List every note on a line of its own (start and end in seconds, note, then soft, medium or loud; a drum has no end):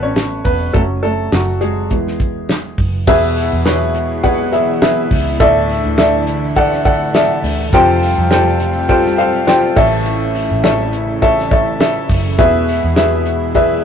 0.00 0.41 A1 medium
0.00 0.70 E3 soft
0.00 0.74 A3 medium
0.00 0.46 B3 medium
0.00 0.04 C#4 medium
0.00 0.73 A4 medium
0.00 0.45 B4 loud
0.00 0.03 C#5 loud
0.00 0.46 C#5 medium
0.04 0.43 C#4 medium
0.16 snare loud
0.16 clap medium
0.16 closed hi-hat medium
0.45 0.72 E1 medium
0.45 0.73 B3 medium
0.45 0.75 B4 medium
0.45 kick medium
0.45 open hi-hat medium
0.73 1.29 F#1 medium
0.73 1.14 F#3 soft
0.73 0.81 A3 medium
0.73 1.15 C#4 medium
0.73 0.80 A4 medium
0.73 kick loud
0.73 closed hi-hat medium
1.03 1.31 A3 medium
1.03 1.30 A4 medium
1.03 closed hi-hat medium
1.32 1.91 F#1 medium
1.32 1.60 F#3 medium
1.32 1.62 F#4 medium
1.32 snare loud
1.32 clap medium
1.32 closed hi-hat medium
1.61 1.90 G#3 medium
1.61 2.74 G#4 medium
1.61 closed hi-hat medium
1.90 2.74 E1 medium
1.90 3.03 E3 soft
1.90 3.04 G#3 soft
1.90 3.04 B3 medium
1.90 kick medium
1.90 closed hi-hat medium
2.07 snare soft
2.20 kick medium
2.20 closed hi-hat medium
2.49 snare loud
2.49 clap medium
2.49 closed hi-hat medium
2.78 3.05 F#1 medium
2.78 kick medium
2.78 open hi-hat medium
3.07 3.50 E2 medium
3.07 3.91 B2 medium
3.07 5.38 B2 medium
3.07 5.38 E3 medium
3.07 5.38 G#3 medium
3.07 7.69 E4 medium
3.07 3.60 G#4 loud
3.07 3.60 B4 loud
3.07 3.60 E5 loud
3.07 kick loud
3.07 crash loud
3.36 hi-hat pedal medium
3.36 open hi-hat medium
3.53 5.07 E2 medium
3.65 4.18 G#4 medium
3.65 4.18 B4 medium
3.65 4.18 C#5 medium
3.65 snare loud
3.65 clap medium
3.65 hi-hat pedal medium
3.65 open hi-hat medium
3.94 hi-hat pedal medium
3.94 open hi-hat medium
4.23 4.50 G#4 medium
4.23 4.50 B4 medium
4.23 4.50 F#5 loud
4.23 kick medium
4.23 hi-hat pedal medium
4.23 open hi-hat medium
4.52 4.79 G#4 medium
4.52 4.79 B4 medium
4.52 4.79 E5 medium
4.52 hi-hat pedal medium
4.52 open hi-hat medium
4.82 5.34 G#4 medium
4.82 5.34 B4 medium
4.82 5.34 E5 medium
4.82 snare loud
4.82 clap medium
4.82 hi-hat pedal medium
4.82 open hi-hat medium
5.11 5.38 C#2 medium
5.11 kick loud
5.11 hi-hat pedal medium
5.11 open hi-hat medium
5.40 5.82 D2 loud
5.40 6.24 A2 medium
5.40 7.71 D3 medium
5.40 7.71 E3 medium
5.40 12.35 A3 medium
5.40 5.92 A4 loud
5.40 5.93 D5 loud
5.40 5.93 E5 loud
5.40 kick loud
5.40 hi-hat pedal medium
5.40 open hi-hat loud
5.69 hi-hat pedal medium
5.69 open hi-hat medium
5.85 7.40 D2 medium
5.98 6.51 A4 medium
5.98 6.51 D5 medium
5.98 6.51 E5 medium
5.98 snare loud
5.98 clap medium
5.98 hi-hat pedal medium
5.98 open hi-hat medium
6.27 hi-hat pedal medium
6.27 open hi-hat medium
6.56 6.83 A4 medium
6.56 6.83 D5 medium
6.56 6.83 F#5 loud
6.56 kick medium
6.56 hi-hat pedal medium
6.56 open hi-hat medium
6.73 snare soft
6.85 7.12 A4 medium
6.85 7.12 D5 medium
6.85 7.12 F#5 medium
6.85 kick loud
6.85 hi-hat pedal medium
6.85 open hi-hat medium
7.14 7.67 A4 medium
7.14 7.67 D5 medium
7.14 7.67 E5 medium
7.14 snare loud
7.14 clap medium
7.14 hi-hat pedal medium
7.14 open hi-hat medium
7.44 7.71 D2 medium
7.44 hi-hat pedal medium
7.44 open hi-hat medium
7.72 8.15 F2 loud
7.72 9.74 C3 medium
7.72 8.57 C3 medium
7.72 9.74 G3 medium
7.72 9.74 F4 medium
7.72 8.26 F4 loud
7.72 8.26 G4 loud
7.72 8.26 A4 loud
7.72 8.26 C5 loud
7.72 8.26 G5 loud
7.72 kick loud
7.72 hi-hat pedal medium
7.72 open hi-hat medium
8.02 hi-hat pedal medium
8.02 open hi-hat medium
8.18 9.73 F2 loud
8.31 8.84 F4 medium
8.31 8.84 G4 medium
8.31 8.84 A4 medium
8.31 8.84 C5 medium
8.31 8.84 G5 loud
8.31 snare loud
8.31 clap medium
8.31 hi-hat pedal medium
8.31 open hi-hat medium
8.60 hi-hat pedal medium
8.60 open hi-hat medium
8.89 9.15 F4 medium
8.89 9.15 G4 medium
8.89 9.15 A4 medium
8.89 9.15 C5 medium
8.89 9.15 G5 loud
8.89 kick medium
8.89 hi-hat pedal medium
8.89 open hi-hat medium
9.06 snare soft
9.18 9.45 F4 medium
9.18 9.45 G4 medium
9.18 9.45 A4 medium
9.18 9.44 C5 medium
9.18 9.45 F5 medium
9.18 hi-hat pedal medium
9.18 open hi-hat medium
9.47 9.76 F4 medium
9.47 9.76 G4 medium
9.47 9.75 A4 medium
9.47 9.77 C5 medium
9.47 9.77 G5 loud
9.47 snare loud
9.47 clap medium
9.47 hi-hat pedal medium
9.47 open hi-hat loud
9.76 10.47 A1 loud
9.76 10.60 A2 medium
9.76 12.36 C#3 medium
9.76 13.84 E3 medium
9.76 10.60 E3 medium
9.76 13.84 E4 medium
9.76 10.55 A4 loud
9.76 10.55 C#5 loud
9.76 10.55 E5 loud
9.76 kick loud
9.76 crash medium
10.06 hi-hat pedal medium
10.06 open hi-hat medium
10.35 hi-hat pedal medium
10.35 open hi-hat medium
10.51 12.05 A1 loud
10.64 11.16 A4 medium
10.64 11.16 C#5 medium
10.64 11.16 E5 medium
10.64 snare loud
10.64 clap medium
10.64 hi-hat pedal medium
10.64 open hi-hat medium
10.93 hi-hat pedal medium
10.93 open hi-hat medium
11.22 11.48 A4 medium
11.22 11.48 C#5 medium
11.22 11.48 E5 loud
11.22 kick medium
11.22 hi-hat pedal medium
11.22 open hi-hat medium
11.39 snare soft
11.51 11.77 A4 medium
11.51 11.78 C#5 medium
11.51 11.78 E5 medium
11.51 kick loud
11.51 hi-hat pedal medium
11.51 open hi-hat medium
11.80 12.33 A4 medium
11.80 12.33 C#5 medium
11.80 12.33 E5 medium
11.80 snare loud
11.80 clap medium
11.80 hi-hat pedal medium
11.80 open hi-hat medium
12.09 12.37 F#1 medium
12.09 kick medium
12.09 hi-hat pedal medium
12.09 open hi-hat medium
12.38 12.81 E2 loud
12.38 13.22 B2 medium
12.38 13.84 B2 medium
12.38 13.84 G#3 medium
12.38 12.91 G#4 loud
12.38 12.91 B4 loud
12.38 12.91 E5 loud
12.38 kick loud
12.38 hi-hat pedal medium
12.38 open hi-hat loud
12.68 hi-hat pedal medium
12.68 open hi-hat medium
12.84 13.84 E2 medium
12.96 13.49 G#4 medium
12.96 13.49 B4 medium
12.96 13.49 E5 medium
12.96 snare loud
12.96 clap medium
12.96 hi-hat pedal medium
12.96 open hi-hat medium
13.26 hi-hat pedal medium
13.26 open hi-hat medium
13.54 13.81 G#4 medium
13.54 13.81 B4 medium
13.54 13.81 E5 loud
13.54 kick medium
13.54 hi-hat pedal medium
13.54 open hi-hat medium